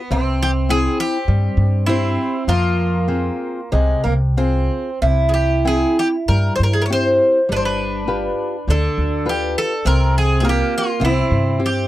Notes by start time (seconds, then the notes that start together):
0.11 C2 C3 C4
0.43 G4
0.69 C4 E4 G#4 G5
1.00 G4
1.28 G2 G3
1.57 G2
1.86 C4 E4 G4
2.47 F2 F3 A#3 F4
3.08 C4 F4 G#4
3.72 C2 C3 G#3
4.04 C2 A#3
4.37 C4 F4 G#4
5.02 C2 C3 E4
5.29 G#4
5.34 G4
5.65 C4 E4 G#4 G5
5.99 G4
6.28 G2 G3 A#4
6.56 G2 C5
6.63 A#4
6.73 G#4
6.82 A#4
6.86 C#5
6.90 C4 E4 G4 C5
7.49 G1 G3 D4 B4
7.57 C5
7.65 B4
8.07 F4 G4 B4
8.68 D2 D3 D4 A4
8.98 D2
9.26 F4 G4 B4
9.58 A4
9.85 C2 C3 C4 A#4
10.18 G#4
10.40 C4 F4 G4 G#4
10.45 A#3
10.49 G4
10.78 F4
11.00 C2 C3 C4
11.05 E4
11.31 G2
11.59 C4 E4 G4
11.66 G4